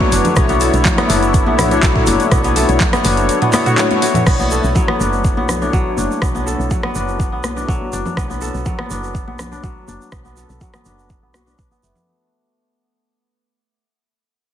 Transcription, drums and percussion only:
0.00 kick
0.12 open hi-hat, shaker
0.24 closed hi-hat, low conga, shaker
0.36 kick, cross-stick, closed hi-hat, mid tom, shaker
0.48 closed hi-hat, high conga, shaker
0.61 open hi-hat, shaker
0.73 closed hi-hat, shaker
0.85 kick, clap, closed hi-hat, low conga, shaker
0.98 cross-stick, closed hi-hat, high conga
1.10 open hi-hat, high conga, shaker
1.23 closed hi-hat, shaker
1.34 kick, closed hi-hat, shaker
1.46 high conga
1.59 cross-stick, mid tom, open hi-hat, high conga, low conga, shaker
1.71 closed hi-hat, shaker
1.83 kick, clap, closed hi-hat, shaker
1.96 kick, mid tom
2.07 open hi-hat, high conga, shaker
2.20 closed hi-hat, shaker
2.32 kick, cross-stick, closed hi-hat, mid tom, shaker
2.44 closed hi-hat, high conga, shaker
2.56 open hi-hat, shaker
2.69 closed hi-hat, shaker
2.80 kick, clap, closed hi-hat, low conga, shaker
2.93 cross-stick, closed hi-hat, high conga, shaker
3.05 open hi-hat, high conga, shaker
3.17 closed hi-hat, shaker
3.29 closed hi-hat, shaker
3.42 closed hi-hat, mid tom
3.53 cross-stick, clap, open hi-hat, high conga, shaker
3.66 closed hi-hat, mid tom, shaker
3.78 clap, closed hi-hat, high tom, shaker
3.91 closed hi-hat, high tom, high conga
4.02 open hi-hat, shaker
4.14 closed hi-hat, mid tom, low conga, shaker
4.27 kick, cross-stick, crash, shaker
4.39 high conga, shaker
4.51 shaker
4.64 shaker
4.75 kick, low conga, shaker
4.88 cross-stick, high conga
5.01 high conga, shaker
5.13 shaker
5.25 kick, shaker
5.37 high conga
5.48 cross-stick, high conga, low conga, shaker
5.62 shaker
5.73 kick, shaker
5.97 high conga, shaker
6.11 shaker
6.22 kick, cross-stick, shaker
6.35 high conga, shaker
6.47 shaker
6.60 shaker
6.71 kick, low conga, shaker
6.83 cross-stick, high conga
6.95 shaker
7.08 shaker
7.20 kick, shaker
7.44 cross-stick, high conga, shaker
7.57 shaker
7.68 kick, shaker
7.81 high conga
7.93 shaker
8.06 low conga, shaker
8.17 kick, cross-stick, shaker
8.30 high conga, shaker
8.41 shaker
8.55 shaker
8.65 kick, low conga, shaker
8.79 cross-stick, high conga
8.91 high conga, shaker
9.03 shaker
9.15 kick, shaker
9.28 high conga
9.39 cross-stick, high conga, low conga, shaker
9.52 shaker
9.64 kick, shaker
9.88 high conga, shaker
10.01 shaker
10.12 kick, cross-stick, shaker
10.24 high conga, shaker
10.37 shaker
10.49 shaker
10.61 kick, low conga, shaker
10.74 cross-stick, high conga, shaker
10.85 shaker
10.99 shaker
11.10 kick, shaker
11.34 cross-stick, high conga, shaker
11.47 shaker
11.59 kick, shaker
11.71 high conga, shaker
11.83 shaker
11.95 low conga, shaker

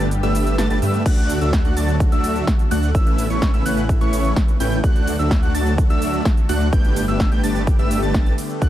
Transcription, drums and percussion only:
0.00 cabasa
0.11 closed hi-hat, cabasa
0.23 closed hi-hat, cabasa
0.35 open hi-hat, cabasa
0.47 closed hi-hat, cabasa
0.58 snare, closed hi-hat, cabasa
0.70 closed hi-hat, cabasa
0.82 open hi-hat, cabasa
0.94 closed hi-hat, cabasa
1.06 kick, closed hi-hat, crash, cabasa
1.18 closed hi-hat, cabasa
1.29 open hi-hat, ride, cabasa
1.41 closed hi-hat, cabasa
1.53 kick, snare, closed hi-hat, cabasa
1.65 closed hi-hat, cabasa
1.77 open hi-hat, ride, cabasa
1.88 closed hi-hat, cabasa
2.00 kick, closed hi-hat, cabasa
2.12 closed hi-hat, cabasa
2.24 open hi-hat, ride, cabasa
2.36 closed hi-hat, cabasa
2.47 kick, snare, closed hi-hat, cabasa
2.59 closed hi-hat, cabasa
2.71 open hi-hat, ride, cabasa
2.83 closed hi-hat, cabasa
2.95 kick, closed hi-hat, cabasa
3.07 closed hi-hat, cabasa
3.18 open hi-hat, ride, cabasa
3.30 closed hi-hat, cabasa
3.42 kick, snare, closed hi-hat, cabasa
3.54 closed hi-hat, cabasa
3.66 open hi-hat, ride, cabasa
3.77 closed hi-hat, cabasa
3.89 kick, closed hi-hat, cabasa
4.01 closed hi-hat, cabasa
4.13 open hi-hat, ride, cabasa
4.25 closed hi-hat, cabasa
4.36 kick, snare, closed hi-hat, cabasa
4.48 closed hi-hat, cabasa
4.60 open hi-hat, ride, cabasa
4.72 closed hi-hat, cabasa
4.84 kick, closed hi-hat, cabasa
4.96 closed hi-hat, cabasa
5.07 open hi-hat, ride, cabasa
5.19 closed hi-hat, cabasa
5.31 kick, snare, closed hi-hat, cabasa
5.43 closed hi-hat, cabasa
5.55 open hi-hat, ride, cabasa
5.66 closed hi-hat, cabasa
5.78 kick, closed hi-hat, cabasa
5.90 closed hi-hat, cabasa
6.02 open hi-hat, ride, cabasa
6.14 closed hi-hat, cabasa
6.25 kick, snare, closed hi-hat, cabasa
6.37 closed hi-hat, cabasa
6.49 open hi-hat, ride, cabasa
6.61 closed hi-hat, cabasa
6.73 kick, closed hi-hat, cabasa
6.85 closed hi-hat, cabasa
6.96 open hi-hat, ride, cabasa
7.08 closed hi-hat, cabasa
7.20 kick, snare, closed hi-hat, cabasa
7.32 closed hi-hat, cabasa
7.44 open hi-hat, ride, cabasa
7.55 closed hi-hat, cabasa
7.67 kick, closed hi-hat, cabasa
7.79 closed hi-hat, cabasa
7.91 open hi-hat, ride, cabasa
8.03 closed hi-hat, cabasa
8.14 kick, snare, closed hi-hat, cabasa
8.26 closed hi-hat, cabasa
8.38 open hi-hat, ride, cabasa
8.50 closed hi-hat, cabasa
8.62 kick, closed hi-hat, cabasa

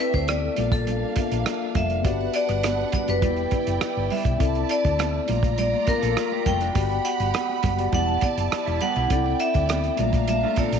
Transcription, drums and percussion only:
0.14 kick, closed hi-hat
0.28 cross-stick, closed hi-hat, high conga
0.56 closed hi-hat, high conga, low conga
0.72 kick, closed hi-hat
0.87 closed hi-hat, muted conga, high conga, low conga
1.16 kick, closed hi-hat, high conga
1.32 closed hi-hat
1.46 cross-stick, closed hi-hat, muted conga
1.75 kick, closed hi-hat, high conga, low conga
1.90 closed hi-hat
2.05 kick, closed hi-hat
2.21 muted conga
2.34 closed hi-hat
2.49 cross-stick, closed hi-hat
2.63 cross-stick, closed hi-hat, muted conga, high conga
2.92 kick, closed hi-hat, high conga, low conga
3.08 closed hi-hat
3.22 kick, closed hi-hat, muted conga, high conga, low conga
3.37 closed hi-hat, muted conga
3.51 kick, closed hi-hat, high conga
3.67 closed hi-hat
3.81 cross-stick, closed hi-hat, muted conga
4.10 open hi-hat, high conga, low conga
4.25 kick, closed hi-hat
4.40 kick, closed hi-hat
4.55 closed hi-hat, muted conga
4.69 closed hi-hat
4.85 kick, closed hi-hat
4.99 cross-stick, closed hi-hat, high conga
5.14 muted conga
5.28 closed hi-hat, high conga, low conga
5.43 kick, closed hi-hat
5.58 closed hi-hat, muted conga, high conga, low conga
5.74 muted conga
5.87 kick, closed hi-hat, high conga
6.03 closed hi-hat
6.17 cross-stick, closed hi-hat
6.32 muted conga
6.46 kick, closed hi-hat, high conga, low conga
6.61 closed hi-hat
6.75 kick, closed hi-hat, muted conga
6.90 closed hi-hat
7.05 closed hi-hat
7.20 closed hi-hat
7.34 cross-stick, closed hi-hat, muted conga, high conga
7.49 muted conga
7.63 kick, closed hi-hat, high conga, low conga
7.79 closed hi-hat
7.92 kick, closed hi-hat, muted conga, high conga, low conga
8.09 muted conga
8.21 kick, closed hi-hat, high conga
8.38 closed hi-hat
8.52 cross-stick, closed hi-hat
8.67 closed hi-hat
8.81 closed hi-hat, high conga, low conga
8.96 closed hi-hat
9.10 kick, closed hi-hat, muted conga
9.26 muted conga
9.40 closed hi-hat
9.54 kick, closed hi-hat
9.69 cross-stick, closed hi-hat, high conga
9.84 closed hi-hat, muted conga
9.97 closed hi-hat, high conga, low conga
10.13 kick, closed hi-hat
10.28 closed hi-hat, muted conga, high conga, low conga
10.56 kick, closed hi-hat, high conga
10.73 closed hi-hat

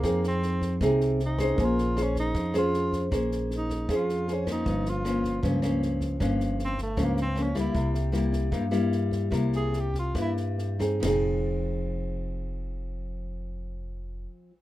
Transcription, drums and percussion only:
0.04 kick, cross-stick, snare
0.23 snare
0.42 snare
0.62 kick, snare
0.81 kick, cross-stick, snare
1.00 snare
1.19 snare
1.39 kick, cross-stick, snare
1.58 kick, snare
1.78 snare
1.97 cross-stick, snare
2.16 kick, snare
2.35 kick, snare
2.54 cross-stick, snare
2.73 snare
2.92 kick, snare
3.12 kick, cross-stick, snare
3.31 snare
3.51 snare
3.70 kick, snare
3.89 kick, cross-stick, snare
4.09 snare
4.28 snare
4.47 kick, cross-stick, snare
4.66 kick, snare
4.85 snare
5.05 cross-stick, snare
5.24 kick, snare
5.43 kick, snare
5.62 cross-stick, snare
5.82 snare
6.00 kick, snare
6.20 kick, cross-stick, snare
6.40 snare
6.59 snare
6.78 kick, snare
6.97 kick, cross-stick, snare
7.17 snare
7.36 snare
7.55 kick, cross-stick, snare
7.75 kick, snare
7.94 snare
8.13 cross-stick, snare
8.33 kick, snare
8.52 kick, snare
8.72 cross-stick, snare
8.92 snare
9.12 kick, snare
9.32 kick, cross-stick, snare
9.52 snare
9.73 snare
9.94 kick, snare
10.15 kick, cross-stick, snare
10.37 snare
10.58 snare
10.80 kick, cross-stick, snare
11.03 snare, floor tom, ride bell

